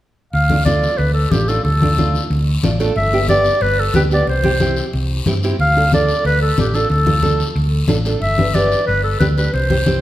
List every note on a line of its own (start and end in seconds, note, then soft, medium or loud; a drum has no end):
0.33 0.86 D2 medium
0.33 0.64 F5 medium
0.33 long guiro medium
0.50 0.56 A3 medium
0.50 0.56 D4 medium
0.50 0.56 F4 medium
0.50 high conga medium
0.65 0.90 A3 medium
0.65 0.90 D4 medium
0.65 0.90 F4 medium
0.65 0.99 D5 medium
0.65 high conga medium
0.65 short guiro medium
0.83 short guiro medium
0.98 1.25 D2 medium
0.98 1.13 B4 medium
0.98 long guiro medium
1.13 1.32 A4 medium
1.31 1.58 A1 medium
1.31 1.38 A3 medium
1.31 1.38 D4 medium
1.31 1.38 F4 medium
1.31 1.50 G4 medium
1.31 high conga medium
1.31 short guiro medium
1.48 1.60 A3 medium
1.48 1.60 D4 medium
1.48 1.61 F4 medium
1.48 1.63 A4 medium
1.48 short guiro medium
1.64 2.17 D2 medium
1.64 2.26 A4 medium
1.64 long guiro medium
1.82 1.87 A3 medium
1.82 1.88 D4 medium
1.82 1.88 F4 medium
1.82 high conga medium
1.98 2.21 A3 medium
1.98 2.21 D4 medium
1.98 2.21 F4 medium
1.98 high conga medium
1.98 short guiro medium
2.15 short guiro medium
2.30 2.57 D2 loud
2.30 long guiro medium
2.63 2.89 A1 medium
2.63 2.69 A3 medium
2.63 2.69 D4 medium
2.63 2.69 F4 medium
2.63 2.79 D5 medium
2.63 high conga medium
2.63 short guiro medium
2.80 2.91 A3 medium
2.80 2.91 D4 medium
2.80 2.92 F4 medium
2.80 2.95 A4 medium
2.80 short guiro medium
2.96 3.49 G1 medium
2.96 3.27 E5 medium
2.96 long guiro medium
3.13 3.18 B3 medium
3.13 3.19 D4 medium
3.13 3.19 G4 medium
3.28 3.52 B3 medium
3.28 3.52 D4 medium
3.28 3.52 G4 medium
3.28 3.64 D5 loud
3.28 high conga medium
3.28 short guiro medium
3.44 short guiro medium
3.61 3.88 G1 medium
3.61 3.81 B4 loud
3.61 long guiro medium
3.80 3.95 A4 medium
3.94 4.21 D2 medium
3.94 4.00 B3 medium
3.94 4.00 D4 medium
3.94 4.01 G4 medium
3.94 4.03 B4 medium
3.94 high conga medium
3.94 short guiro medium
4.11 4.23 B3 medium
4.11 4.23 D4 medium
4.11 4.23 G4 medium
4.11 4.28 D5 medium
4.11 short guiro medium
4.27 4.80 C2 medium
4.27 4.90 C5 medium
4.27 long guiro medium
4.43 4.49 C4 medium
4.43 4.50 E4 medium
4.43 4.50 G4 medium
4.43 high conga medium
4.60 4.84 C4 medium
4.60 4.84 E4 medium
4.60 4.84 G4 medium
4.60 high conga medium
4.60 short guiro medium
4.77 short guiro medium
4.93 5.20 C2 medium
4.93 long guiro medium
5.26 5.52 G2 medium
5.26 5.32 C4 medium
5.26 5.32 E4 medium
5.26 5.32 G4 medium
5.26 high conga medium
5.26 short guiro medium
5.43 5.55 C4 medium
5.43 5.55 E4 medium
5.43 5.55 G4 medium
5.43 short guiro medium
5.59 6.12 D2 medium
5.59 5.91 F5 loud
5.59 long guiro medium
5.76 5.82 D4 medium
5.76 5.82 F4 medium
5.76 5.82 A4 medium
5.92 6.16 D4 medium
5.92 6.16 F4 medium
5.92 6.16 A4 medium
5.92 6.24 D5 medium
5.92 high conga medium
5.92 short guiro medium
6.09 short guiro medium
6.25 6.51 D2 medium
6.25 6.41 B4 loud
6.25 long guiro medium
6.42 6.57 A4 medium
6.57 6.84 A1 medium
6.57 6.63 D4 medium
6.57 6.64 F4 medium
6.57 6.76 G4 medium
6.57 6.64 A4 medium
6.57 high conga medium
6.57 short guiro medium
6.74 6.86 D4 medium
6.74 6.86 F4 medium
6.74 6.90 A4 medium
6.74 6.86 A4 medium
6.74 short guiro medium
6.90 7.43 D2 medium
6.90 7.52 A4 medium
6.90 long guiro medium
7.06 7.12 D4 medium
7.06 7.13 F4 medium
7.06 7.13 A4 medium
7.06 high conga medium
7.22 7.46 D4 medium
7.22 7.46 F4 medium
7.22 7.46 A4 medium
7.22 high conga medium
7.22 short guiro medium
7.40 short guiro medium
7.56 7.82 D2 medium
7.56 long guiro medium
7.88 8.15 A1 medium
7.88 7.94 D4 medium
7.88 7.95 F4 medium
7.88 7.95 A4 medium
7.88 high conga medium
7.88 short guiro medium
8.05 8.17 D4 medium
8.05 8.17 F4 medium
8.05 8.17 A4 medium
8.05 short guiro medium
8.21 8.74 G1 medium
8.21 8.56 E5 loud
8.21 long guiro medium
8.38 8.44 D4 medium
8.38 8.44 G4 medium
8.38 8.44 B4 medium
8.38 high conga medium
8.54 8.77 D4 medium
8.54 8.78 G4 medium
8.54 8.78 B4 medium
8.54 8.86 D5 loud
8.54 high conga medium
8.54 short guiro medium
8.72 short guiro medium
8.87 9.14 G1 medium
8.87 9.03 B4 medium
8.87 long guiro medium
9.04 9.19 A4 medium
9.20 9.47 D2 medium
9.20 9.26 D4 medium
9.20 9.26 G4 medium
9.20 9.27 B4 medium
9.20 high conga medium
9.20 short guiro medium
9.37 9.49 D4 medium
9.37 9.49 G4 medium
9.37 9.53 B4 medium
9.37 9.49 B4 medium
9.37 short guiro medium
9.54 10.01 C2 medium
9.54 10.01 C5 medium
9.54 long guiro medium
9.70 9.76 E4 medium
9.70 9.76 G4 medium
9.70 9.76 C5 medium
9.70 high conga medium
9.86 10.01 E4 medium
9.86 10.01 G4 medium
9.86 10.01 C5 medium
9.86 high conga medium
9.86 short guiro medium